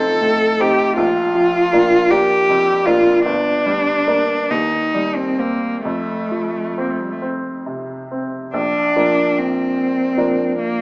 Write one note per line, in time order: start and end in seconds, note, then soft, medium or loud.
0.00 0.93 A1 soft
0.00 1.00 F3 soft
0.00 0.59 C4 soft
0.00 0.60 D#4 soft
0.00 0.63 A4 medium
0.21 0.82 A2 soft
0.59 0.94 C4 soft
0.59 0.94 D#4 soft
0.59 0.96 G4 medium
0.97 3.22 A#1 soft
0.97 2.12 F4 medium
1.35 1.96 F3 soft
1.73 2.07 A#3 soft
1.73 2.08 D4 soft
2.11 2.45 A#3 soft
2.11 2.45 D4 soft
2.11 2.87 G4 medium
2.49 3.10 F2 soft
2.86 3.22 A#3 soft
2.86 3.22 D4 soft
2.86 3.25 F4 medium
3.25 4.46 G1 soft
3.25 4.52 D4 medium
3.66 4.33 G3 soft
4.07 4.46 A#3 soft
4.07 4.46 D4 soft
4.50 5.80 D#2 soft
4.50 5.17 D#4 medium
4.94 5.66 G3 soft
5.16 5.41 C4 medium
5.39 5.84 A#3 medium
5.39 5.80 C4 soft
5.84 8.52 F2 soft
5.84 6.82 A3 medium
6.31 7.04 F3 soft
6.78 6.92 A#3 soft
6.78 7.18 C4 soft
6.91 7.03 A3 soft
7.01 7.13 G3 soft
7.11 7.22 A3 soft
7.22 7.63 C4 soft
7.66 8.38 C3 soft
8.11 8.51 C4 soft
8.54 8.95 A#1 soft
8.54 9.40 D4 medium
8.96 10.14 F3 soft
8.96 10.14 A#3 soft
8.96 10.14 D4 soft
9.38 10.58 C4 medium
10.17 10.81 F3 soft
10.17 10.81 A#3 soft
10.17 10.81 D4 soft
10.58 10.81 A#3 medium